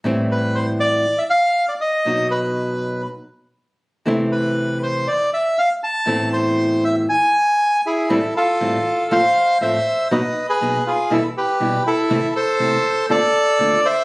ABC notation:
X:1
M:4/4
L:1/16
Q:1/4=120
K:Am
V:1 name="Bandoneon"
z2 B2 c2 d3 e f3 d ^d2- | ^d2 B6 z8 | z2 B4 c2 d2 e2 f2 a2- | a2 c4 e2 ^g6 [E^G]2 |
[EA]2 [FA]6 [cf]4 [ce]4 | [B^d]3 [^GB]3 [FG]2 [EA]2 [=GB]4 [EA]2- | [EA]2 [Ac]6 [Ad]6 [ce]2 |]
V:2 name="Nylon-string guitar"
[A,,E,G,CE]8 z8 | [B,,^F,B,^D^F]8 z8 | [C,E,A,CE]8 z8 | [E,,A,,E,A,CE]8 z8 |
[A,,E,G,CE]2 z2 [A,,E,G,CE]2 z2 [A,,F,A,CF]2 z2 [A,,F,A,CF]2 z2 | [B,,^F,B,^D^F]2 z2 [B,,F,B,DF]2 z2 [B,,E,G,B,E]2 z2 [B,,E,G,B,E]2 z2 | [C,E,A,CE]2 z2 [C,E,A,CE]2 z2 [D,A,CF]2 z2 [D,A,CF]2 z2 |]